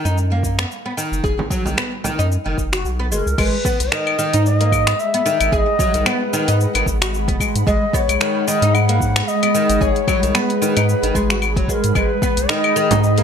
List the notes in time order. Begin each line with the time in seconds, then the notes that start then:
0.05 F#2 D#4, cabasa
0.18 cabasa
0.32 A#3
0.43 kick, cabasa
0.59 B3, finger snap, cabasa
0.71 cabasa
0.86 B3
0.97 D#3, cabasa
1.12 F#1, cabasa
1.24 F#1 G#4, kick, cabasa
1.39 frame drum
1.50 F#3, kick, cabasa
1.65 B1 D#3, frame drum, cabasa
1.77 B3, finger snap, cabasa
2.04 D#3, frame drum, cabasa
2.19 F#2 D#4, cabasa
2.32 cabasa
2.46 F#1 D#3
2.58 F#1, kick, cabasa
2.73 F#4, finger snap, cabasa
2.85 B1, cabasa
2.99 B3
3.12 F#1 G#3 B4, cabasa
3.16 A#4
3.27 C#2, cabasa
3.38 G#1 G#3 B4, kick, crash, cabasa, claves
3.65 B3, kick, cabasa
3.80 B1 G#4, closed hi-hat, cabasa
3.92 D#3 D#5, finger snap, cabasa
4.07 claves
4.19 D#3, cabasa
4.33 G#2 D#4, closed hi-hat, cabasa
4.43 D#5 B5, cabasa
4.61 A#3 F#5, closed hi-hat
4.72 kick, cabasa, claves
4.87 B3, finger snap, closed hi-hat, cabasa
4.99 E5, cabasa
5.14 B3, closed hi-hat
5.26 D#3, cabasa
5.41 G#1, closed hi-hat, cabasa, claves
5.47 E5
5.52 G#1 G#4 D#5 E5, kick, cabasa
5.79 F#3, kick, cabasa
5.94 B1 D#3, closed hi-hat, cabasa
6.06 B3 B4, finger snap, cabasa, claves
6.33 D#3, cabasa
6.48 G#2 D#4, closed hi-hat, cabasa
6.61 cabasa
6.75 G#1 D#3, closed hi-hat, claves
6.86 G#1, kick, cabasa
7.02 F#4, finger snap, closed hi-hat, cabasa
7.14 cabasa
7.28 F#1 B3, kick, closed hi-hat
7.40 G#3, kick, cabasa, claves
7.55 G#2, closed hi-hat, cabasa
7.67 G#1 G#3 D#5, kick, cabasa
7.93 B3 C#5, kick, cabasa
8.09 B1, closed hi-hat, cabasa, claves
8.20 D#3, finger snap, cabasa
8.47 D#3 D#5, cabasa
8.62 G#2 D#4, closed hi-hat, cabasa
8.74 F#5, cabasa, claves
8.89 A#3, closed hi-hat
9.01 kick, cabasa
9.16 B3, finger snap, closed hi-hat, cabasa
9.28 D#5, cabasa
9.43 B3, closed hi-hat, claves
9.54 D#3, cabasa
9.70 G#1, closed hi-hat, cabasa
9.81 G#1 G#4 C#5, kick, cabasa
9.96 closed hi-hat
10.08 F#3, kick, cabasa, claves
10.23 B1 D#3, closed hi-hat, cabasa
10.28 C#5
10.35 B3 B4, finger snap, cabasa
10.50 closed hi-hat
10.62 D#3, cabasa
10.77 G#2 D#4, closed hi-hat, cabasa, claves
10.89 cabasa
11.03 G#1 D#3, closed hi-hat
11.15 G#1 G#3, kick, cabasa
11.30 F#4, finger snap, closed hi-hat, cabasa
11.42 cabasa, claves
11.56 F#1 F#3, kick, closed hi-hat
11.68 G#3 B4, kick, cabasa
11.73 A#4
11.84 G#2, closed hi-hat, cabasa
11.95 G#1 G#3 B4, kick, cabasa, claves
12.22 B3, kick, cabasa
12.37 B1, closed hi-hat, cabasa
12.49 D#3 D#5, finger snap, cabasa
12.64 claves
12.76 D#3, cabasa
12.91 G#2 D#4, closed hi-hat, frame drum, cabasa
13.02 D#5, cabasa
13.18 A#3, closed hi-hat